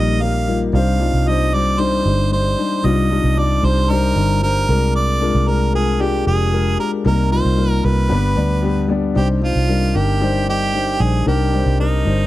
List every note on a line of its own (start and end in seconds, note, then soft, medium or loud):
0.00 0.70 A#1 medium
0.00 0.74 C3 medium
0.00 0.21 G3 medium
0.00 0.21 A#3 medium
0.00 0.21 D#4 medium
0.00 0.48 F4 medium
0.00 0.75 G4 loud
0.00 0.22 A#4 loud
0.00 0.24 D#5 loud
0.21 0.43 G3 medium
0.21 0.43 A#3 medium
0.21 0.43 D#4 medium
0.21 0.43 A#4 medium
0.21 0.61 F5 medium
0.47 0.69 G3 medium
0.47 0.69 A#3 medium
0.47 0.69 D#4 medium
0.47 0.70 F4 medium
0.73 1.10 C2 loud
0.73 1.49 C3 medium
0.73 0.95 G3 medium
0.73 0.95 D4 medium
0.73 0.96 D#4 medium
0.73 0.96 C5 loud
0.73 1.30 F5 medium
1.00 1.22 G3 medium
1.00 1.22 D4 medium
1.00 1.22 D#4 medium
1.00 1.22 F4 medium
1.13 2.01 C2 medium
1.26 1.48 G3 medium
1.26 1.48 D4 medium
1.26 1.49 D#4 medium
1.26 1.49 C5 medium
1.26 1.55 D#5 loud
1.53 1.74 G3 medium
1.53 1.75 D4 medium
1.53 1.75 D#4 medium
1.53 1.75 C5 medium
1.53 1.82 D5 loud
1.79 2.01 G3 loud
1.79 2.01 D4 medium
1.79 2.01 D#4 medium
1.79 2.01 C5 loud
1.79 2.32 C5 loud
2.05 2.54 G1 medium
2.05 2.27 G3 medium
2.05 2.27 D4 medium
2.05 2.27 D#4 medium
2.05 2.27 C5 medium
2.31 2.53 G3 medium
2.31 2.53 D4 medium
2.31 2.54 D#4 medium
2.31 2.54 C5 medium
2.31 2.87 C5 medium
2.58 2.80 G3 medium
2.58 2.80 D4 medium
2.58 2.80 D#4 medium
2.58 2.80 C5 medium
2.83 3.21 C2 loud
2.83 3.59 C3 medium
2.83 3.06 G3 medium
2.83 3.06 D4 medium
2.83 3.06 D#4 medium
2.83 3.06 F4 loud
2.83 3.40 D#5 medium
3.10 3.32 G3 medium
3.10 3.32 D4 medium
3.10 3.33 D#4 medium
3.10 3.33 F4 medium
3.24 3.60 C2 medium
3.37 3.59 G3 medium
3.37 3.59 D4 medium
3.37 3.59 D#4 medium
3.37 3.59 D5 medium
3.37 3.66 D5 medium
3.63 4.12 C2 medium
3.63 3.85 G3 medium
3.63 3.85 D4 medium
3.63 3.85 D#4 medium
3.63 3.85 C5 medium
3.63 3.92 C5 loud
3.89 4.11 G3 medium
3.89 4.11 D4 medium
3.89 4.12 D#4 medium
3.89 4.42 A#4 loud
3.89 4.12 C5 loud
4.16 4.65 G1 medium
4.16 4.38 G3 medium
4.16 4.38 D4 medium
4.16 4.38 D#4 medium
4.16 4.38 C5 medium
4.42 4.64 G3 medium
4.42 4.64 D4 medium
4.42 4.64 D#4 medium
4.42 4.92 A#4 loud
4.42 4.65 C5 medium
4.68 5.30 C2 loud
4.68 5.44 C3 medium
4.68 5.12 G#3 medium
4.68 5.12 D4 medium
4.68 5.13 F4 medium
4.68 5.13 A#4 medium
4.95 5.50 D5 loud
5.21 5.43 G#3 medium
5.21 5.43 D4 medium
5.21 5.43 F4 medium
5.21 5.43 A#4 medium
5.35 6.23 C2 loud
5.46 5.69 G#3 medium
5.46 5.69 D4 medium
5.46 5.69 F4 medium
5.46 5.69 A#4 medium
5.46 5.74 A#4 medium
5.73 5.95 G#3 medium
5.73 5.95 D4 medium
5.73 5.96 F4 medium
5.73 6.03 G#4 medium
5.73 5.96 A#4 medium
5.99 6.22 G#3 medium
5.99 6.22 D4 medium
5.99 6.22 F4 medium
5.99 6.22 G4 loud
5.99 6.27 G4 medium
6.25 6.76 F1 loud
6.25 6.48 G#3 medium
6.25 6.48 D4 medium
6.25 6.48 F4 medium
6.25 6.48 G4 medium
6.25 6.76 G#4 medium
6.52 6.74 G#3 medium
6.52 6.74 D4 medium
6.52 6.75 F4 medium
6.52 6.75 A#4 medium
6.78 7.00 G#3 medium
6.78 7.00 D4 medium
6.78 7.01 F4 medium
6.78 7.01 G4 medium
6.78 6.91 A#4 medium
7.04 7.42 C2 loud
7.04 7.80 C3 medium
7.04 7.27 G3 medium
7.04 7.27 A#3 medium
7.04 7.27 D#4 medium
7.04 7.27 A#4 loud
7.04 7.31 A#4 medium
7.31 7.53 G3 medium
7.31 7.53 A#3 medium
7.31 7.54 D#4 medium
7.31 7.54 F4 medium
7.31 7.71 C5 medium
7.45 7.82 C2 medium
7.56 7.79 G3 medium
7.56 7.79 A#3 medium
7.56 7.80 D#4 medium
7.56 7.80 A#4 medium
7.71 7.86 A#4 medium
7.83 8.09 C2 medium
7.83 8.06 G3 medium
7.83 8.06 A#3 medium
7.83 8.06 D#4 medium
7.83 8.06 A#4 medium
7.83 8.90 B4 medium
8.09 8.35 G1 loud
8.09 8.85 G2 medium
8.09 8.32 G3 medium
8.09 8.32 B3 medium
8.09 8.32 D4 medium
8.09 8.32 B4 loud
8.35 9.12 D2 medium
8.35 8.58 G3 medium
8.35 8.58 B3 medium
8.35 8.58 D4 medium
8.35 8.59 D5 medium
8.62 8.84 G3 medium
8.62 8.85 B3 medium
8.62 8.85 D4 medium
8.62 8.85 G4 medium
8.88 9.11 G3 medium
8.88 9.11 B3 medium
8.88 9.11 D4 medium
8.88 9.12 D5 medium
9.14 9.53 C2 medium
9.14 9.91 C3 medium
9.14 9.37 G3 medium
9.14 9.37 D4 medium
9.14 9.38 D#4 medium
9.14 9.28 G4 medium
9.14 9.38 C5 loud
9.41 9.64 G3 medium
9.41 9.64 D4 medium
9.41 9.64 D#4 medium
9.41 9.98 F4 medium
9.41 9.64 C5 medium
9.56 9.92 C2 medium
9.68 9.90 G3 medium
9.68 9.90 D4 medium
9.68 9.91 D#4 medium
9.68 9.91 A#4 medium
9.94 10.96 G1 medium
9.94 10.16 G3 medium
9.94 10.17 D4 medium
9.94 10.17 D#4 medium
9.94 10.48 G4 loud
9.94 10.17 A#4 medium
10.20 10.43 G3 medium
10.20 10.43 D4 medium
10.20 10.43 D#4 medium
10.20 10.43 C5 loud
10.47 10.69 G3 medium
10.47 10.70 D4 medium
10.47 10.70 D#4 medium
10.47 11.03 G4 loud
10.73 10.96 G3 medium
10.73 10.96 D4 medium
10.73 10.96 D#4 medium
10.73 10.96 C5 medium
10.99 11.25 A#1 medium
10.99 11.22 G3 medium
10.99 11.22 D4 medium
10.99 11.22 D#4 medium
10.99 11.27 G#4 loud
11.26 11.63 C2 loud
11.26 12.02 C3 medium
11.26 11.48 G3 medium
11.26 11.48 D4 medium
11.26 11.49 D#4 medium
11.26 11.76 G4 medium
11.26 11.49 A#4 loud
11.52 11.75 G3 medium
11.52 11.75 D4 medium
11.52 11.75 D#4 medium
11.52 11.75 C5 medium
11.66 12.03 C2 loud
11.79 12.01 G3 medium
11.79 12.01 D4 medium
11.79 12.01 D#4 medium
11.79 12.27 D#4 medium
11.79 12.02 A#4 medium
12.05 12.27 G1 medium
12.05 12.27 G3 medium
12.05 12.27 D4 medium
12.05 12.27 D#4 medium
12.05 12.27 C5 medium